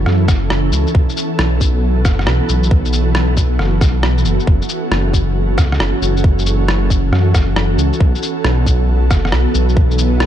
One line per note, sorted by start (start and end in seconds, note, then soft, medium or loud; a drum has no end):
0.00 7.96 E3 medium
0.00 0.91 C#4 medium
0.00 0.93 E4 medium
0.00 4.43 A4 medium
0.06 0.30 F#2 loud
0.06 cross-stick soft
0.28 0.72 F#1 medium
0.28 kick loud
0.28 cross-stick medium
0.28 shaker medium
0.50 cross-stick loud
0.72 0.86 C#2 medium
0.72 shaker medium
0.87 shaker soft
0.95 1.08 B1 loud
0.95 4.45 B3 medium
0.95 10.26 F#4 medium
0.95 kick loud
1.09 shaker soft
1.17 shaker medium
1.39 2.04 B1 loud
1.39 cross-stick loud
1.61 kick medium
1.61 shaker medium
2.05 2.26 F#1 medium
2.05 kick loud
2.05 cross-stick medium
2.05 shaker medium
2.19 cross-stick soft
2.27 2.41 B1 medium
2.27 cross-stick loud
2.49 3.15 B1 medium
2.49 shaker medium
2.63 shaker soft
2.71 kick loud
2.85 shaker soft
2.93 shaker medium
3.15 3.59 B1 medium
3.15 cross-stick loud
3.37 kick medium
3.37 shaker medium
3.59 3.83 F#1 medium
3.59 cross-stick soft
3.81 4.25 B1 medium
3.81 kick loud
3.81 cross-stick medium
3.81 shaker medium
4.03 cross-stick loud
4.18 shaker soft
4.25 4.39 F#1 medium
4.25 shaker medium
4.40 shaker soft
4.47 4.61 F#1 loud
4.47 7.97 C#4 medium
4.47 10.26 A4 medium
4.47 kick loud
4.62 shaker soft
4.69 shaker medium
4.91 5.57 F#1 loud
4.91 cross-stick loud
5.14 kick medium
5.14 shaker soft
5.58 5.79 C#2 medium
5.58 kick loud
5.58 cross-stick medium
5.58 shaker soft
5.72 cross-stick soft
5.80 5.93 F#1 medium
5.80 cross-stick loud
6.02 6.67 F#1 medium
6.02 shaker medium
6.17 shaker soft
6.24 kick loud
6.39 shaker soft
6.46 shaker medium
6.68 7.11 F#1 loud
6.68 cross-stick loud
6.90 kick medium
6.90 shaker soft
7.12 7.36 F#2 medium
7.12 cross-stick soft
7.34 7.77 F#1 medium
7.34 kick loud
7.34 cross-stick medium
7.34 shaker medium
7.56 cross-stick loud
7.78 7.92 C#2 medium
7.78 shaker medium
7.93 shaker soft
8.00 8.14 B1 loud
8.00 10.26 E3 medium
8.00 10.26 B3 medium
8.00 kick loud
8.15 shaker soft
8.23 shaker medium
8.45 9.10 B1 loud
8.45 cross-stick loud
8.66 kick medium
8.66 shaker medium
9.10 9.32 F#1 medium
9.10 kick medium
9.10 cross-stick medium
9.10 shaker medium
9.25 cross-stick soft
9.32 9.46 B1 medium
9.32 cross-stick medium
9.55 10.20 B1 medium
9.55 shaker medium
9.69 shaker soft
9.77 kick loud
9.91 shaker soft
9.98 shaker medium
10.20 10.26 B1 medium
10.20 cross-stick loud